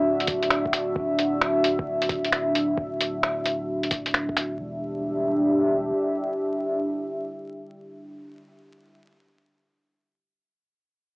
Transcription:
0.00 4.58 D1 medium
0.00 4.56 D4 medium
0.00 4.55 F#4 medium
0.00 4.55 E5 medium
0.20 closed hi-hat soft
0.27 kick medium
0.27 closed hi-hat soft
0.42 closed hi-hat soft
0.50 finger snap medium
0.50 closed hi-hat soft
0.65 kick medium
0.73 finger snap medium
0.73 closed hi-hat soft
0.96 kick loud
1.19 closed hi-hat soft
1.41 finger snap medium
1.64 closed hi-hat medium
1.79 kick medium
2.02 closed hi-hat soft
2.09 kick medium
2.09 closed hi-hat soft
2.24 closed hi-hat soft
2.32 finger snap medium
2.32 closed hi-hat soft
2.55 closed hi-hat soft
2.77 kick loud
3.00 closed hi-hat medium
3.23 finger snap medium
3.45 closed hi-hat soft
3.83 closed hi-hat soft
3.91 kick medium
3.91 closed hi-hat medium
4.06 closed hi-hat soft
4.14 finger snap medium
4.14 closed hi-hat soft
4.29 kick medium
4.37 finger snap medium
4.37 closed hi-hat medium
4.59 5.92 E1 medium
4.59 8.99 D4 medium
4.59 8.99 G4 medium
4.59 8.99 E5 medium

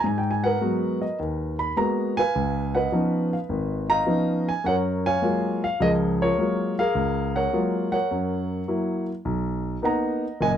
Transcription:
0.04 0.54 G#2 medium
0.04 0.19 G#5 medium
0.18 0.31 G5 medium
0.31 0.43 G#5 medium
0.44 1.56 A#4 medium
0.44 1.56 B4 medium
0.44 0.97 F#5 medium
0.61 1.03 F#3 soft
0.61 1.03 G#3 soft
0.61 1.03 B3 soft
0.61 1.03 F#4 medium
1.02 1.18 D#5 medium
1.19 1.69 D#2 medium
1.59 1.76 B5 medium
1.77 2.18 G#3 soft
1.77 2.18 A#3 soft
1.77 2.18 B3 soft
1.77 2.19 F#4 medium
1.77 2.14 A#5 medium
2.17 2.74 B4 medium
2.17 3.29 F5 medium
2.17 2.76 G#5 loud
2.35 2.85 C#2 medium
2.75 3.86 B4 medium
2.75 3.86 D#5 medium
2.75 3.28 F#5 medium
2.92 3.33 F3 medium
2.92 3.33 B3 soft
2.92 3.34 C#4 soft
2.92 3.34 D#4 medium
3.33 3.38 F5 medium
3.49 3.99 G#1 medium
3.90 4.62 D#5 medium
3.90 4.61 F5 medium
3.90 4.49 A#5 loud
4.06 4.48 F3 soft
4.06 4.48 B3 soft
4.06 4.48 C#4 soft
4.06 4.48 D#4 medium
4.49 4.64 G#5 medium
4.64 5.14 F#2 medium
4.64 5.77 A#4 medium
4.64 5.05 C#5 medium
4.64 4.75 F#5 medium
5.06 6.17 C#5 medium
5.06 5.62 F5 medium
5.06 5.64 G#5 medium
5.22 5.63 F#3 soft
5.22 5.63 G#3 soft
5.22 5.64 A#3 soft
5.22 5.64 F4 medium
5.64 5.81 F5 medium
5.80 6.30 C#2 medium
5.80 6.30 F3 medium
5.80 6.79 G#4 medium
5.80 6.21 A#4 medium
5.80 5.91 D#5 medium
6.22 6.37 F4 medium
6.22 6.78 A#4 medium
6.22 6.74 C#5 medium
6.38 6.79 F#3 soft
6.38 6.79 G#3 soft
6.38 6.79 A#3 soft
6.38 6.79 F4 medium
6.79 7.89 G#4 medium
6.79 7.35 A#4 medium
6.79 7.37 F5 medium
6.95 7.45 C#2 medium
7.36 7.92 A#4 medium
7.36 7.92 C#5 medium
7.36 7.91 F#5 medium
7.53 7.94 F#3 medium
7.53 7.94 G#3 soft
7.53 7.94 A#3 soft
7.53 7.94 F4 medium
7.92 9.04 A#4 medium
7.92 9.04 C#5 medium
7.92 9.03 F#5 medium
8.11 8.61 F#2 medium
8.68 9.09 F#3 soft
8.68 9.09 A#3 soft
8.68 9.09 E4 soft
9.25 9.75 B1 medium
9.82 10.24 A#3 medium
9.82 10.24 B3 soft
9.82 10.24 D#4 medium
9.82 10.41 D#5 medium
9.82 10.57 F#5 medium
9.82 10.43 A#5 medium
10.41 10.57 F#1 medium
10.41 10.57 A#2 medium
10.41 10.57 D#5 medium
10.41 10.51 G#5 loud

